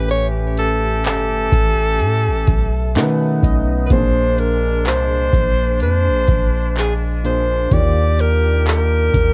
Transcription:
Already playing: A1 A2 A3 C#4 G4 B4
0.09 C#5, closed hi-hat
0.57 A4, closed hi-hat
1.05 G1 A4, clap, closed hi-hat
1.52 A1, kick, closed hi-hat
1.99 A2, closed hi-hat
2.28 A1
2.47 B1, kick, closed hi-hat
2.95 B2 D#3 A3 B3 C#4 D#4 A#4 F#5, clap, closed hi-hat
3.03 B4
3.43 B1 D#5, kick, closed hi-hat
3.86 A#2 B4
3.90 A#1 G#3 A#3 C4 D4 G#4 C5, kick, closed hi-hat
3.98 D4
4.38 A#4, closed hi-hat
4.86 C2 C5, clap, closed hi-hat
5.33 A#1, kick, closed hi-hat
5.80 F2 C5, closed hi-hat
6.09 A#1
6.28 A#1, kick, closed hi-hat
6.76 G#4, clap, closed hi-hat
7.24 A#2 A#3 D4 G#4 C5, closed hi-hat
7.71 D#2 D#3 A#3 D4 F4 G4 C#5 D5, kick, closed hi-hat
7.80 D5
8.19 A#4, closed hi-hat
8.66 A#4, clap, closed hi-hat
9.14 D#2, kick, closed hi-hat

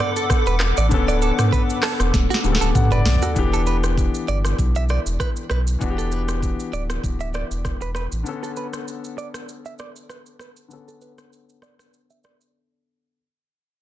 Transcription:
Already playing: D3 B3 C#4 A4 F#5 B5 D6
0.00 cross-stick
0.16 A4, shaker
0.30 kick, cross-stick, shaker
0.46 E1 B4, shaker
0.60 cross-stick, clap, shaker
0.77 A1 D5, shaker
0.89 D1 D3 B3 C#4, kick, shaker
0.94 A4
1.08 D5, shaker
1.22 A4, shaker
1.39 cross-stick, mid tom, shaker
1.53 B4, kick, shaker
1.70 shaker
1.83 A4, cross-stick, clap, open hi-hat, shaker
2.00 E1, cross-stick, shaker
2.14 D1, kick, snare, shaker
2.30 F#4, snare, shaker
2.43 D1 C#3 D3 B3 G4, shaker
2.52 A4, snare
2.61 D1 A4, shaker
2.75 F#5, kick, mid tom, shaker
2.85 mid tom
2.92 F#1 B4 D5, mid tom, shaker
3.05 B1, snare, open hi-hat, shaker
3.16 floor tom
3.22 F#4 A4, floor tom, shaker
3.34 E1 E3 B3 D4, kick, shaker
3.39 G4
3.54 A4, shaker
3.67 B4, shaker
3.84 cross-stick, shaker
3.98 kick, shaker
4.14 shaker
4.28 G1 D5, shaker
4.45 cross-stick, shaker
4.59 B1, kick, shaker
4.75 E5, shaker
4.89 D5, cross-stick, shaker
5.06 E1, shaker
5.20 B4, kick, cross-stick, shaker
5.36 shaker
5.50 B1 B4, cross-stick, shaker
5.67 shaker
5.79 E1 E3 B3 D4, kick, shaker
5.84 F#4
5.90 G4
5.98 A4, shaker
6.12 B4, shaker
6.29 cross-stick, shaker
6.42 kick, shaker
6.60 shaker
6.73 D1 D5, shaker
6.90 cross-stick, shaker
7.04 D1, kick, shaker
7.20 E5, shaker
7.34 D5, cross-stick, shaker
7.51 E1, shaker
7.65 kick, cross-stick, shaker
7.81 E1 B4, shaker
7.95 B4, cross-stick, shaker
8.12 A1, shaker
8.23 D3 B3 C#4, shaker
8.28 A4
8.43 A4, shaker
8.56 B4, shaker
8.73 cross-stick, shaker
8.88 shaker
9.04 shaker
9.18 D5, shaker
9.34 cross-stick, shaker
9.49 shaker
9.65 E5, shaker
9.79 D5, cross-stick, shaker
9.96 shaker
10.10 B4, cross-stick, shaker
10.26 shaker
10.39 B4, cross-stick, shaker
10.57 shaker
10.68 D3 B3 C#4, shaker
10.73 A4
10.88 A4, shaker
11.01 B4, shaker
11.18 cross-stick, shaker
11.33 shaker
11.49 shaker
11.62 D5, cross-stick, shaker
11.79 cross-stick, shaker
11.94 shaker
12.10 E5, shaker
12.24 D5, cross-stick, shaker
12.41 shaker

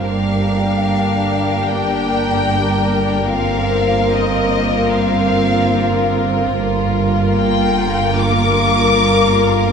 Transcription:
0.05 G1 G2 A#3 D4 G4 A#4 D5 F5 G5
1.68 G5
3.30 C4 F4 C5 F5
4.10 D#5
4.92 F5
6.54 G1 G2 A#3 A#4
7.35 G5
8.15 D6

